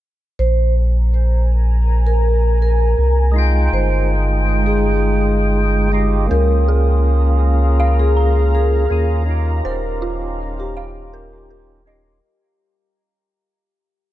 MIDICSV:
0, 0, Header, 1, 6, 480
1, 0, Start_track
1, 0, Tempo, 740741
1, 252, Time_signature, 4, 2, 24, 8
1, 9154, End_track
2, 0, Start_track
2, 0, Title_t, "Ambient pad"
2, 0, Program_c, 0, 92
2, 253, Note_on_c, 0, 80, 67
2, 254, Note_on_c, 0, 82, 80
2, 256, Note_on_c, 0, 70, 75
2, 2153, Note_off_c, 0, 80, 0
2, 2154, Note_off_c, 0, 82, 0
2, 2155, Note_off_c, 0, 70, 0
2, 2169, Note_on_c, 0, 87, 82
2, 2170, Note_on_c, 0, 56, 75
2, 2171, Note_on_c, 0, 79, 73
2, 4071, Note_off_c, 0, 87, 0
2, 4072, Note_off_c, 0, 56, 0
2, 4072, Note_off_c, 0, 79, 0
2, 4086, Note_on_c, 0, 82, 86
2, 4087, Note_on_c, 0, 70, 72
2, 4091, Note_on_c, 0, 77, 70
2, 5990, Note_off_c, 0, 70, 0
2, 6015, Note_on_c, 0, 67, 76
2, 7903, Note_off_c, 0, 82, 0
2, 7906, Note_off_c, 0, 77, 0
2, 7914, Note_off_c, 0, 67, 0
2, 9154, End_track
3, 0, Start_track
3, 0, Title_t, "Synth bell"
3, 0, Program_c, 1, 98
3, 4088, Note_on_c, 1, 70, 76
3, 4203, Control_c, 1, 64, 127
3, 4319, Note_off_c, 1, 70, 0
3, 4331, Note_on_c, 1, 68, 77
3, 4560, Note_off_c, 1, 68, 0
3, 5052, Note_on_c, 1, 77, 100
3, 5281, Note_off_c, 1, 77, 0
3, 5292, Note_on_c, 1, 82, 71
3, 5521, Note_off_c, 1, 82, 0
3, 6020, Control_c, 1, 64, 0
3, 6144, Control_c, 1, 64, 127
3, 6253, Note_on_c, 1, 72, 104
3, 6469, Note_off_c, 1, 72, 0
3, 6493, Note_on_c, 1, 65, 97
3, 6634, Note_off_c, 1, 65, 0
3, 6977, Note_on_c, 1, 77, 102
3, 7203, Note_off_c, 1, 77, 0
3, 7216, Note_on_c, 1, 70, 89
3, 7442, Note_off_c, 1, 70, 0
3, 7455, Note_on_c, 1, 70, 77
3, 7670, Note_off_c, 1, 70, 0
3, 7694, Note_on_c, 1, 75, 78
3, 7910, Note_off_c, 1, 75, 0
3, 7942, Control_c, 1, 64, 0
3, 9154, End_track
4, 0, Start_track
4, 0, Title_t, "Vibraphone"
4, 0, Program_c, 2, 11
4, 254, Note_on_c, 2, 72, 101
4, 470, Note_off_c, 2, 72, 0
4, 1339, Note_on_c, 2, 70, 83
4, 1658, Note_off_c, 2, 70, 0
4, 1699, Note_on_c, 2, 70, 79
4, 2023, Note_off_c, 2, 70, 0
4, 2420, Note_on_c, 2, 72, 79
4, 2633, Note_off_c, 2, 72, 0
4, 3022, Note_on_c, 2, 68, 87
4, 4003, Note_off_c, 2, 68, 0
4, 4089, Note_on_c, 2, 70, 99
4, 4307, Note_off_c, 2, 70, 0
4, 5180, Note_on_c, 2, 68, 89
4, 5499, Note_off_c, 2, 68, 0
4, 5539, Note_on_c, 2, 68, 91
4, 5863, Note_off_c, 2, 68, 0
4, 6262, Note_on_c, 2, 70, 81
4, 6474, Note_off_c, 2, 70, 0
4, 6867, Note_on_c, 2, 67, 94
4, 7845, Note_off_c, 2, 67, 0
4, 9154, End_track
5, 0, Start_track
5, 0, Title_t, "Tonewheel organ"
5, 0, Program_c, 3, 16
5, 2149, Note_on_c, 3, 56, 77
5, 2163, Note_on_c, 3, 63, 70
5, 2177, Note_on_c, 3, 65, 65
5, 2192, Note_on_c, 3, 79, 85
5, 3813, Note_off_c, 3, 56, 0
5, 3820, Note_off_c, 3, 63, 0
5, 3827, Note_off_c, 3, 65, 0
5, 3834, Note_off_c, 3, 79, 0
5, 3837, Note_on_c, 3, 56, 74
5, 3843, Note_on_c, 3, 63, 67
5, 3850, Note_on_c, 3, 65, 68
5, 3856, Note_on_c, 3, 67, 79
5, 4057, Note_off_c, 3, 56, 0
5, 4060, Note_off_c, 3, 63, 0
5, 4060, Note_on_c, 3, 58, 75
5, 4064, Note_off_c, 3, 65, 0
5, 4066, Note_off_c, 3, 67, 0
5, 4075, Note_on_c, 3, 61, 71
5, 4087, Note_on_c, 3, 65, 68
5, 4102, Note_on_c, 3, 68, 88
5, 5728, Note_off_c, 3, 58, 0
5, 5736, Note_off_c, 3, 61, 0
5, 5742, Note_off_c, 3, 65, 0
5, 5750, Note_off_c, 3, 68, 0
5, 5759, Note_on_c, 3, 58, 76
5, 5767, Note_on_c, 3, 61, 74
5, 5773, Note_on_c, 3, 65, 72
5, 5781, Note_on_c, 3, 68, 83
5, 5978, Note_off_c, 3, 58, 0
5, 5982, Note_off_c, 3, 61, 0
5, 5985, Note_off_c, 3, 65, 0
5, 5989, Note_off_c, 3, 68, 0
5, 5989, Note_on_c, 3, 61, 85
5, 6003, Note_on_c, 3, 63, 73
5, 6018, Note_on_c, 3, 65, 73
5, 6031, Note_on_c, 3, 67, 87
5, 7653, Note_off_c, 3, 61, 0
5, 7660, Note_off_c, 3, 63, 0
5, 7667, Note_off_c, 3, 65, 0
5, 7674, Note_off_c, 3, 67, 0
5, 7684, Note_on_c, 3, 61, 73
5, 7691, Note_on_c, 3, 63, 70
5, 7698, Note_on_c, 3, 65, 75
5, 7702, Note_on_c, 3, 67, 86
5, 7900, Note_off_c, 3, 61, 0
5, 7904, Note_off_c, 3, 63, 0
5, 7907, Note_off_c, 3, 65, 0
5, 7909, Note_off_c, 3, 67, 0
5, 9154, End_track
6, 0, Start_track
6, 0, Title_t, "Sub bass"
6, 0, Program_c, 4, 38
6, 253, Note_on_c, 4, 34, 97
6, 1910, Note_off_c, 4, 34, 0
6, 1933, Note_on_c, 4, 36, 94
6, 2390, Note_off_c, 4, 36, 0
6, 2413, Note_on_c, 4, 31, 89
6, 4070, Note_off_c, 4, 31, 0
6, 4088, Note_on_c, 4, 37, 93
6, 5748, Note_off_c, 4, 37, 0
6, 5772, Note_on_c, 4, 39, 103
6, 6230, Note_off_c, 4, 39, 0
6, 6252, Note_on_c, 4, 27, 91
6, 7910, Note_off_c, 4, 27, 0
6, 9154, End_track
0, 0, End_of_file